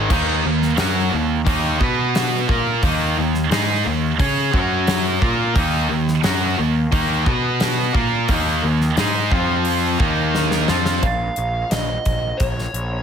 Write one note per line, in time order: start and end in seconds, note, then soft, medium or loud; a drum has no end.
0.09 0.42 D#2 loud
0.09 0.42 D#3 medium
0.09 0.43 A#3 loud
0.09 0.43 D#4 loud
0.09 kick loud
0.09 crash medium
0.43 0.76 D#2 medium
0.43 0.71 D#3 medium
0.43 0.71 A#3 medium
0.62 snare soft
0.76 1.10 F#2 medium
0.76 1.10 F#3 medium
0.76 1.10 C#4 medium
0.76 1.11 F#4 loud
0.76 snare loud
0.76 open hi-hat medium
1.10 1.44 D#2 medium
1.10 1.38 D#3 medium
1.10 1.39 A#3 medium
1.15 1.41 D#3 medium
1.15 1.41 A#3 medium
1.45 1.78 D#2 medium
1.45 1.78 D#3 medium
1.45 1.78 A#3 loud
1.45 1.79 D#4 loud
1.45 kick loud
1.45 open hi-hat medium
1.78 2.44 B2 loud
1.78 2.46 B3 medium
1.78 2.47 F#4 medium
1.78 2.47 B4 loud
1.78 kick loud
1.83 2.49 B4 medium
2.15 snare loud
2.15 open hi-hat medium
2.48 2.81 A#2 medium
2.48 2.81 A#3 medium
2.48 2.82 F4 medium
2.48 2.82 A#4 medium
2.48 kick loud
2.83 3.14 D#2 loud
2.83 3.16 D#3 loud
2.83 3.16 A#3 medium
2.83 3.16 D#4 loud
2.83 kick loud
2.83 open hi-hat medium
3.17 3.49 D#2 medium
3.17 3.45 D#3 medium
3.17 3.45 A#3 medium
3.34 snare soft
3.50 3.82 G#2 medium
3.50 3.84 G#3 medium
3.50 3.85 D#4 loud
3.50 3.85 G#4 loud
3.50 snare loud
3.50 open hi-hat medium
3.85 4.17 D#2 medium
3.85 4.12 D#3 medium
3.85 4.12 A#3 medium
4.19 4.51 C#3 medium
4.19 4.51 C#4 medium
4.19 4.53 G#4 loud
4.19 4.52 C#5 loud
4.19 kick loud
4.19 open hi-hat medium
4.51 5.18 F#2 loud
4.51 5.19 F#3 medium
4.51 5.20 C#4 medium
4.51 5.20 F#4 loud
4.51 kick loud
4.87 snare loud
4.87 open hi-hat medium
5.20 5.53 A#2 loud
5.20 5.53 A#3 medium
5.20 5.54 F4 medium
5.20 5.54 A#4 medium
5.20 kick loud
5.53 5.87 D#2 loud
5.53 5.87 D#3 loud
5.53 5.88 A#3 medium
5.53 5.88 D#4 loud
5.53 kick loud
5.53 open hi-hat medium
5.88 6.21 D#2 medium
5.88 6.16 D#3 medium
5.88 6.17 A#3 medium
6.08 snare soft
6.22 6.56 F#2 medium
6.22 6.56 F#3 medium
6.22 6.56 C#4 loud
6.22 6.57 F#4 loud
6.22 snare loud
6.22 open hi-hat medium
6.57 6.90 D#2 medium
6.57 6.85 D#3 medium
6.57 6.86 A#3 medium
6.91 7.24 D#2 loud
6.91 7.25 D#3 loud
6.91 7.26 A#3 loud
6.91 7.26 D#4 loud
6.91 kick loud
6.91 open hi-hat medium
7.26 7.91 B2 loud
7.26 7.92 B3 loud
7.26 7.93 F#4 loud
7.26 7.94 B4 loud
7.26 kick loud
7.60 snare loud
7.60 open hi-hat medium
7.93 8.26 A#2 medium
7.93 8.27 A#3 medium
7.93 8.27 F4 medium
7.93 8.27 A#4 loud
7.93 kick loud
8.28 8.61 D#2 loud
8.28 8.61 D#3 medium
8.28 8.61 A#3 loud
8.28 8.62 D#4 loud
8.28 kick loud
8.28 open hi-hat medium
8.62 8.95 D#2 medium
8.62 8.90 D#3 medium
8.62 8.90 A#3 medium
8.81 snare soft
8.97 9.29 G#2 medium
8.97 9.30 G#3 medium
8.97 9.31 D#4 medium
8.97 9.31 G#4 medium
8.97 snare loud
8.97 open hi-hat medium
9.31 9.96 F2 medium
9.31 9.99 F3 medium
9.31 9.99 C4 medium
9.31 9.99 F4 loud
9.31 kick loud
9.65 open hi-hat medium
9.99 10.64 D#2 loud
9.99 10.67 D#3 medium
9.99 10.67 A#3 loud
9.99 10.68 D#4 loud
9.99 kick loud
10.35 snare medium
10.51 snare medium
10.68 11.00 F2 medium
10.68 11.02 F3 medium
10.68 11.02 C4 medium
10.68 11.02 F4 loud
10.68 snare medium
10.86 snare medium
11.03 11.28 A#1 medium
11.03 11.71 F5 medium
11.03 kick loud
11.03 closed hi-hat medium
11.36 11.63 A#1 medium
11.36 closed hi-hat medium
11.71 11.97 A#1 medium
11.71 12.42 D#5 medium
11.71 snare loud
11.71 closed hi-hat medium
12.05 12.32 A#1 medium
12.05 kick medium
12.05 closed hi-hat medium
12.37 12.66 A#1 medium
12.37 13.03 C#5 medium
12.37 kick loud
12.37 closed hi-hat medium
12.58 snare soft
12.73 12.99 A#1 medium
12.73 closed hi-hat medium